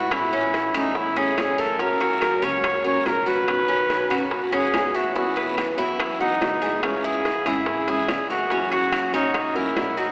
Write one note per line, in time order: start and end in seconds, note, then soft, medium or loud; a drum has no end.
0.00 0.69 A2 medium
0.00 0.11 G#3 soft
0.00 0.11 B3 soft
0.00 0.32 E4 medium
0.00 0.12 F#4 soft
0.00 0.14 F#4 medium
0.11 0.74 E3 medium
0.11 0.74 A3 medium
0.11 0.74 C#4 medium
0.11 0.75 E4 medium
0.11 0.72 E4 medium
0.11 high bongo medium
0.11 high timbale medium
0.11 long guiro medium
0.11 claves medium
0.33 0.74 C#4 medium
0.33 high bongo soft
0.54 high bongo medium
0.54 high timbale medium
0.54 low timbale soft
0.54 short guiro medium
0.73 1.33 E2 medium
0.73 0.94 A3 medium
0.73 0.94 C#4 medium
0.73 0.98 D#4 medium
0.73 0.94 E4 medium
0.73 1.15 E4 medium
0.73 high bongo soft
0.73 high timbale medium
0.73 short guiro medium
0.73 claves medium
0.94 1.19 E4 medium
0.94 muted nylon-string guitar stroke medium
0.94 high bongo medium
0.94 long guiro medium
1.16 1.36 A3 soft
1.16 1.57 C#4 medium
1.16 1.37 C#4 medium
1.16 1.36 E4 medium
1.16 1.61 G#4 medium
1.16 high bongo soft
1.16 high timbale medium
1.36 2.36 F#2 medium
1.36 1.78 E3 soft
1.36 1.79 A3 soft
1.36 1.79 C#4 soft
1.36 high bongo soft
1.36 low bongo medium
1.36 high timbale medium
1.36 low timbale medium
1.36 short guiro medium
1.36 claves medium
1.58 1.80 A4 medium
1.58 1.79 A#4 medium
1.58 short guiro medium
1.79 2.42 C#3 medium
1.79 2.43 F#3 medium
1.79 2.42 A#3 medium
1.79 2.00 C#4 medium
1.79 2.42 C#4 medium
1.79 2.41 F#4 medium
1.79 2.45 A#4 medium
1.79 high bongo medium
1.79 long guiro medium
2.00 2.41 F#4 medium
2.00 high bongo soft
2.00 high timbale medium
2.21 high bongo medium
2.21 high timbale medium
2.21 low timbale medium
2.21 short guiro medium
2.21 claves medium
2.42 3.02 C#2 medium
2.42 2.62 F#3 medium
2.42 2.62 A#3 medium
2.42 2.83 C#4 medium
2.42 2.63 C#4 medium
2.42 2.62 F#4 medium
2.42 2.85 C#5 loud
2.42 high bongo soft
2.42 short guiro medium
2.63 muted nylon-string guitar stroke medium
2.63 high bongo medium
2.63 high timbale medium
2.63 long guiro medium
2.63 claves medium
2.84 3.03 F#3 soft
2.84 3.04 A#3 medium
2.84 3.04 C#4 medium
2.84 3.05 F#4 medium
2.84 3.25 A#4 medium
2.84 3.08 C#5 medium
2.84 high bongo soft
3.04 4.04 B1 medium
3.04 3.46 F#3 soft
3.04 3.47 A#3 soft
3.04 3.47 F#4 soft
3.04 3.29 A#4 medium
3.04 high bongo soft
3.04 low bongo medium
3.04 high timbale medium
3.04 low timbale medium
3.04 short guiro medium
3.26 3.67 F#4 medium
3.26 4.26 B4 loud
3.26 short guiro medium
3.47 4.09 B2 medium
3.47 4.10 D#3 medium
3.47 4.10 C#4 medium
3.47 4.09 F#4 medium
3.47 high bongo medium
3.47 high timbale medium
3.47 long guiro medium
3.47 claves medium
3.68 4.09 C#4 medium
3.68 high bongo soft
3.90 high bongo medium
3.90 high timbale medium
3.90 low timbale medium
3.90 short guiro medium
4.10 4.49 B2 medium
4.10 4.30 D#3 soft
4.10 4.30 C#4 medium
4.10 4.30 F#4 medium
4.10 4.51 F#4 medium
4.10 high bongo soft
4.10 high timbale medium
4.10 short guiro medium
4.10 claves medium
4.30 muted nylon-string guitar stroke medium
4.30 high bongo medium
4.30 long guiro medium
4.52 4.72 F#2 medium
4.52 4.73 D#3 medium
4.52 4.93 C#4 medium
4.52 4.73 C#4 medium
4.52 4.72 F#4 medium
4.52 4.97 G#4 loud
4.52 high bongo soft
4.52 high timbale medium
4.73 5.72 E2 medium
4.73 5.14 B2 soft
4.73 5.15 D#3 soft
4.73 5.15 C#4 soft
4.73 5.15 F#4 soft
4.73 high bongo soft
4.73 low bongo medium
4.73 high timbale medium
4.73 low timbale medium
4.73 short guiro medium
4.73 claves medium
4.94 5.16 F#4 medium
4.94 5.15 E5 medium
4.94 short guiro medium
5.15 5.77 B2 medium
5.15 5.80 E3 medium
5.15 5.78 B3 medium
5.15 5.36 E4 medium
5.15 5.78 E4 medium
5.15 5.55 F#4 medium
5.15 5.76 F#4 medium
5.15 high bongo medium
5.15 long guiro medium
5.36 5.77 B4 medium
5.36 high bongo soft
5.36 high timbale medium
5.57 high bongo medium
5.57 high timbale medium
5.57 low timbale medium
5.57 short guiro medium
5.57 claves medium
5.77 6.37 F#2 medium
5.77 5.98 E3 soft
5.77 5.98 B3 medium
5.77 6.19 E4 medium
5.77 5.98 E4 medium
5.77 6.18 E4 medium
5.77 5.98 F#4 medium
5.77 high bongo soft
5.77 short guiro medium
5.99 muted nylon-string guitar stroke medium
5.99 high bongo medium
5.99 high timbale medium
5.99 long guiro medium
5.99 claves medium
6.19 6.40 E3 medium
6.19 6.40 B3 medium
6.19 6.80 D#4 medium
6.19 6.41 E4 medium
6.19 6.40 F#4 medium
6.19 6.61 F#5 medium
6.19 high bongo soft
6.41 7.40 C#2 medium
6.41 6.82 E3 soft
6.41 6.82 B3 soft
6.41 6.83 F#4 soft
6.41 high bongo soft
6.41 low bongo medium
6.41 high timbale medium
6.41 low timbale medium
6.41 short guiro medium
6.62 7.03 G#4 medium
6.62 short guiro medium
6.82 7.45 C#3 medium
6.82 7.45 E3 medium
6.82 7.46 G#3 medium
6.82 7.06 C#4 medium
6.82 7.46 C#4 medium
6.82 7.44 E4 medium
6.82 high bongo medium
6.82 high timbale medium
6.82 long guiro medium
6.82 claves medium
7.04 7.45 E4 medium
7.04 7.49 G#4 loud
7.04 high bongo soft
7.25 high bongo medium
7.25 high timbale medium
7.25 low timbale medium
7.25 short guiro medium
7.45 8.05 G#1 medium
7.45 7.66 E3 medium
7.45 7.67 G#3 medium
7.45 7.66 C#4 medium
7.45 7.66 E4 medium
7.45 7.91 E4 medium
7.45 7.87 G#4 medium
7.45 high bongo soft
7.45 high timbale medium
7.45 short guiro medium
7.45 claves medium
7.66 muted nylon-string guitar stroke medium
7.66 high bongo medium
7.66 long guiro medium
7.87 8.07 E3 medium
7.87 8.08 G#3 medium
7.87 8.08 C#4 medium
7.87 8.08 E4 medium
7.87 8.29 E4 medium
7.87 8.29 G#4 medium
7.87 high bongo soft
7.87 high timbale medium
8.08 9.07 F#1 medium
8.08 8.50 E3 soft
8.08 8.50 G#3 soft
8.08 8.50 C#4 soft
8.08 8.51 E4 soft
8.08 high bongo soft
8.08 low bongo medium
8.08 high timbale medium
8.08 low timbale medium
8.08 short guiro medium
8.08 claves medium
8.30 8.69 F#4 medium
8.30 8.50 A#4 medium
8.30 short guiro medium
8.50 9.12 C#3 medium
8.50 9.14 F#3 medium
8.50 9.13 A#3 medium
8.50 8.71 C#4 medium
8.50 9.13 C#4 medium
8.50 9.12 F#4 medium
8.50 high bongo medium
8.50 long guiro medium
8.72 9.12 F#4 medium
8.72 9.11 F#4 medium
8.72 high bongo soft
8.72 high timbale medium
8.92 high bongo medium
8.92 high timbale medium
8.92 low timbale medium
8.92 short guiro medium
8.92 claves medium
9.12 9.72 A#1 medium
9.12 9.33 F#3 soft
9.12 9.33 A#3 medium
9.12 9.34 C#4 medium
9.12 9.54 C#4 medium
9.12 9.57 D#4 medium
9.12 9.33 F#4 medium
9.12 high bongo soft
9.12 short guiro medium
9.34 muted nylon-string guitar stroke medium
9.34 high bongo medium
9.34 high timbale medium
9.34 long guiro medium
9.34 claves medium
9.55 9.74 F#3 medium
9.55 9.75 A#3 medium
9.55 9.75 C#4 medium
9.55 9.99 E4 medium
9.55 9.75 F#4 medium
9.55 9.96 A#4 medium
9.55 high bongo soft
9.75 10.12 B1 medium
9.75 10.12 F#3 soft
9.75 10.12 A#3 soft
9.75 10.12 C#4 soft
9.75 10.12 F#4 soft
9.75 high bongo soft
9.75 low bongo medium
9.75 high timbale medium
9.75 low timbale medium
9.75 short guiro medium
9.97 10.12 D#4 medium
9.97 10.12 F#4 medium
9.97 short guiro medium